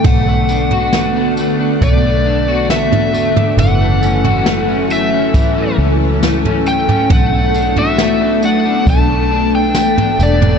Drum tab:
CC |x---------------|----------------|----------------|
TB |x-x-x-x-x---x-x-|x-x-x-x-x---x-x-|x-x-x-x-x---x-x-|
SD |----o-------o---|----o-------o---|----o-------o---|
FT |o--o----o----o-o|o--o----o----o-o|o--o---------o-o|
BD |o-------o-------|--------o-------|o-------o-------|